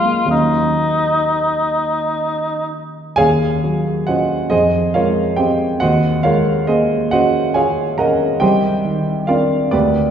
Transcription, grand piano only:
0.00 0.26 B1 soft
0.00 0.26 F#3 soft
0.00 0.33 G#3 soft
0.00 0.05 A#3 soft
0.00 0.29 D#4 soft
0.05 0.26 A#3 soft
0.25 3.12 D#2 soft
0.25 3.12 F#3 soft
0.25 3.13 A#3 soft
0.25 3.13 C#4 soft
0.25 3.14 D#4 soft
3.16 4.47 D#2 medium
3.16 4.03 G#4 medium
3.16 4.03 C#5 medium
3.16 4.03 F5 medium
3.16 4.06 G#5 loud
3.64 4.35 F#3 soft
4.07 4.48 C#4 soft
4.07 4.48 F4 soft
4.07 4.49 F#4 soft
4.07 4.49 C5 soft
4.07 4.48 D#5 medium
4.07 4.51 F#5 medium
4.50 5.77 F2 medium
4.50 4.92 G#4 medium
4.50 4.92 C5 medium
4.50 4.94 D#5 medium
4.94 5.65 G#3 soft
4.94 5.35 F4 medium
4.94 5.35 A#4 medium
4.94 5.36 C#5 medium
4.94 5.38 F5 medium
5.36 5.78 C4 soft
5.36 5.78 G4 medium
5.36 5.78 C5 medium
5.36 5.78 D#5 medium
5.36 5.81 G5 medium
5.80 8.38 D#2 medium
5.80 6.22 F#4 medium
5.80 6.22 C5 medium
5.80 6.22 D#5 medium
5.80 6.24 F#5 medium
6.23 6.95 G#3 soft
6.23 6.65 F4 medium
6.23 6.65 A#4 medium
6.23 6.65 C#5 medium
6.23 6.68 F5 medium
6.67 7.39 A#3 soft
6.67 7.10 G#4 medium
6.67 7.10 C5 medium
6.67 7.11 D#5 medium
7.11 7.82 C#4 soft
7.11 7.53 F#4 medium
7.11 7.53 C5 medium
7.11 7.53 D#5 medium
7.11 7.56 F#5 medium
7.54 8.25 F4 soft
7.54 7.96 G#4 medium
7.54 7.96 C#5 medium
7.54 7.96 F5 medium
7.54 7.98 G#5 medium
7.98 8.42 C#4 soft
7.98 8.39 A#4 medium
7.98 8.39 D#5 medium
7.98 8.39 F#5 medium
7.98 8.41 A#5 medium
8.40 9.69 C2 medium
8.40 9.25 G4 medium
8.40 9.24 C5 medium
8.40 9.25 D#5 medium
8.40 9.28 G5 medium
8.85 9.55 D#3 soft
9.27 9.69 C4 soft
9.27 9.70 D4 soft
9.27 9.70 F4 medium
9.27 9.70 A#4 medium
9.27 9.70 D5 medium
9.27 9.73 F5 medium
9.71 10.11 D2 medium
9.71 10.11 G4 medium
9.71 10.11 B4 medium
9.71 10.11 D5 medium

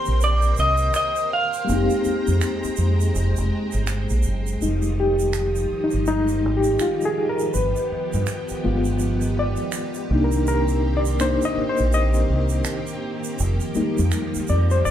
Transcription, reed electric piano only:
0.00 1.29 D3 medium
0.00 1.25 D#3 medium
0.00 1.27 A#3 medium
0.00 1.28 C4 medium
0.00 1.30 G4 medium
1.65 1.74 G3 medium
1.65 4.56 A#3 medium
1.69 4.58 G#3 medium
1.69 4.57 C4 medium
1.69 4.59 D#4 medium
1.75 4.60 G4 medium
4.61 6.06 G3 soft
4.61 6.06 G#3 soft
4.61 5.83 D#4 medium
5.00 5.86 G4 medium
5.84 6.07 D#4 medium
6.07 6.40 G3 soft
6.07 6.40 G#3 soft
6.07 6.53 D#4 medium
6.57 6.81 G4 medium
6.81 7.03 F4 medium
7.05 7.30 G#4 medium
7.29 7.52 A#4 medium
7.54 8.23 B4 medium
8.64 9.69 G#3 medium
8.64 9.70 B3 soft
8.64 9.70 F4 medium
9.39 10.25 D5 medium
10.11 11.16 A#3 medium
10.11 11.16 D4 soft
10.11 11.16 D#4 medium
10.24 10.47 A#4 medium
10.48 10.92 A#4 medium
10.97 11.21 D5 medium
11.20 11.53 A#3 soft
11.20 11.53 D4 soft
11.20 11.53 D#4 medium
11.20 11.45 C5 loud
11.45 11.69 D#5 loud
11.69 11.94 C5 medium
11.94 12.62 D#5 loud
13.75 14.91 G3 medium
13.75 14.91 G#3 soft
13.75 14.91 A#3 soft
13.75 14.91 D#4 medium
14.50 14.59 D5 medium
14.71 14.86 C5 medium
14.85 14.91 D5 loud

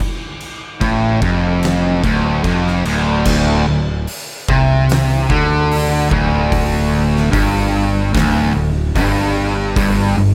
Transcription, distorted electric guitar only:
0.80 1.21 A2 loud
1.22 2.02 F2 loud
2.04 2.43 D2 loud
2.44 2.84 F2 loud
2.85 3.25 D2 medium
3.26 3.66 D2 medium
3.67 4.00 D2 medium
4.49 5.29 C3 loud
5.30 6.10 D3 loud
6.10 7.30 D2 loud
7.31 8.12 G2 loud
8.13 8.53 D2 medium
8.54 8.87 D2 medium
8.95 9.75 G2 loud
9.76 10.16 G2 loud
10.18 10.34 G2 medium

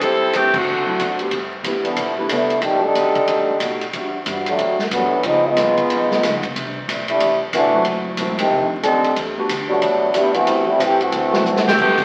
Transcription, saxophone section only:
0.01 0.34 G3 medium
0.01 0.34 C4 medium
0.01 0.34 E4 medium
0.01 0.34 A4 loud
0.35 0.55 E3 medium
0.35 0.55 A3 medium
0.35 0.55 C4 medium
0.35 0.55 G4 medium
0.56 1.20 D3 medium
0.56 1.20 A3 medium
0.56 1.21 C4 medium
0.56 1.21 F#4 medium
11.67 11.78 E3 medium
11.67 11.78 A3 medium
11.67 11.78 C4 medium
11.67 11.78 G4 medium
11.81 11.99 D3 medium
11.81 11.99 A3 medium
11.81 11.99 B3 medium
11.81 11.99 G4 medium

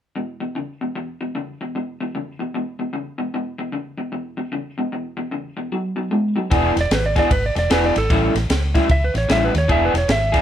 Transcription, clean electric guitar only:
0.16 0.38 E2 medium
0.16 0.38 B2 medium
0.40 0.54 E2 medium
0.40 0.54 B2 medium
0.55 0.78 E2 medium
0.55 0.78 C#3 medium
0.81 0.94 E2 medium
0.81 0.94 B2 medium
0.95 1.18 E2 medium
0.95 1.18 B2 medium
1.21 1.34 E2 medium
1.21 1.34 B2 medium
1.35 1.57 E2 medium
1.35 1.58 C#3 medium
1.61 1.73 E2 medium
1.61 1.74 B2 medium
1.75 1.97 E2 medium
1.75 1.98 B2 medium
2.01 2.13 E2 medium
2.01 2.13 B2 medium
2.15 2.37 E2 medium
2.15 2.37 C#3 medium
2.39 2.52 E2 medium
2.39 2.53 B2 medium
2.54 2.77 E2 medium
2.54 2.77 B2 medium
2.79 2.92 E2 medium
2.79 2.92 B2 medium
2.93 3.16 E2 medium
2.93 3.16 C#3 medium
3.18 3.32 E2 medium
3.18 3.32 B2 medium
3.34 3.56 E2 medium
3.34 3.56 B2 medium
3.58 3.71 E2 medium
3.58 3.72 B2 medium
3.72 3.95 E2 medium
3.72 3.96 C#3 medium
3.98 4.11 E2 medium
3.98 4.11 B2 medium
4.12 4.35 E2 medium
4.12 4.35 B2 medium
4.37 4.51 E2 medium
4.37 4.51 B2 medium
4.52 4.75 E2 medium
4.52 4.75 C#3 medium
4.78 4.91 E2 medium
4.78 4.91 B2 medium
4.92 5.15 E2 medium
4.92 5.15 B2 medium
5.17 5.30 E2 medium
5.17 5.31 B2 medium
5.31 5.54 E2 medium
5.31 5.55 C#3 medium
5.57 5.70 E2 medium
5.57 5.70 B2 medium
5.72 5.95 B2 medium
5.72 5.95 F#3 medium
5.96 6.10 B2 medium
5.96 6.10 F#3 medium
6.11 6.34 B2 medium
6.11 6.34 G#3 medium
6.36 6.49 B2 medium
6.36 6.50 F#3 medium
6.50 6.76 E3 medium
6.50 6.75 B3 medium
6.50 6.75 D4 medium
6.50 6.75 G#4 medium
6.76 muted clean electric guitar stroke medium
6.91 muted clean electric guitar stroke soft
7.16 7.29 E3 medium
7.16 7.30 B3 medium
7.16 7.30 D4 medium
7.16 7.30 G#4 medium
7.31 muted clean electric guitar stroke soft
7.55 muted clean electric guitar stroke soft
7.70 7.95 E3 medium
7.70 7.95 B3 medium
7.70 7.94 D4 medium
7.70 7.94 G#4 medium
7.95 muted clean electric guitar stroke medium
8.10 8.35 A2 medium
8.10 8.35 G3 medium
8.10 8.34 C#4 medium
8.10 8.34 E4 medium
8.35 muted clean electric guitar stroke soft
8.50 muted clean electric guitar stroke soft
8.74 8.88 A2 medium
8.74 8.88 G3 medium
8.74 8.88 C#4 medium
8.74 8.89 E4 loud
8.89 muted clean electric guitar stroke soft
9.14 muted clean electric guitar stroke soft
9.28 9.54 A2 medium
9.28 9.54 G3 medium
9.28 9.53 C#4 medium
9.28 9.52 E4 medium
9.54 muted clean electric guitar stroke soft
9.68 9.94 E3 medium
9.68 9.93 B3 medium
9.68 9.93 D4 medium
9.68 9.93 G#4 loud
9.94 muted clean electric guitar stroke soft
10.08 muted clean electric guitar stroke soft
10.32 10.42 E3 medium
10.32 10.42 B3 medium
10.32 10.42 D4 medium
10.32 10.42 G#4 medium

